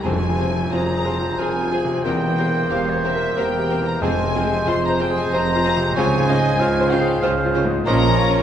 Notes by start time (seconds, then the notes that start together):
0.04 F1 F2 F3 G#3 C4 F4 G#4 C5 G#5, tam-tam
0.30 C3
0.38 C4 F4 G#4 C5
0.52 F3
0.72 F1 F2 C4 F4 G#4 C5 A#5
0.97 G#4
1.05 C4 F4 G#4 C5
1.20 F4
1.38 F1 F2 C4 F4 G#4 A#4 C5 G#5
1.63 F4
1.71 C4 F4 G#4 C5
1.85 C3
2.03 E1 E2 A#3 C4 G4 A#4 C5 G5
2.27 E3
2.38 C4 G4 A#4 C5
2.48 A#3
2.70 E1 E2 C4 G4 A#4 C5 F5
2.86 C#5
2.93 C5
3.04 C4 G4 A#4 C5 E5
3.16 A#4
3.36 E1 E2 C4 G4 A#4 C5 G5
3.58 G4
3.70 C4 G4 A#4 C5
3.81 E3
3.87 A#5
4.01 F1 F2 G#3 C4 F4 G#4 C5 G#5
4.24 C3
4.35 C4 F4 G#4 C5
4.45 G#3
4.66 F1 F2 C4 F4 G#4 C5 C6
4.85 A#5
4.89 C5
5.00 C4 F4 G#4 C5 G5
5.10 G#4
5.17 G#5
5.32 F1 F2 C4 F4 G#4 C5 A#5
5.55 F4
5.65 C4 F4 G#4 C5
5.77 C3
5.95 C#2 C#3 F3 C4 C#4 F4 C5 C#5 G#5
6.18 G#2
6.28 C#4 F4 C5 D#5
6.39 G#3
6.58 C#2 C#3 C#4 F4 C5 F5
6.81 C5
6.90 C#4 F4 C5 F5 G5
7.01 G#4
7.22 C#2 C#3 C#4 F4 C5 F5
7.45 F4
7.55 C#4 F4 C5
7.65 G#2
7.86 A#1 A#2 F3 A#3 C#4 F4 A#4 C#5 D#5 A#5
8.03 C#4
8.09 F3
8.18 F4 C#5
8.30 C#4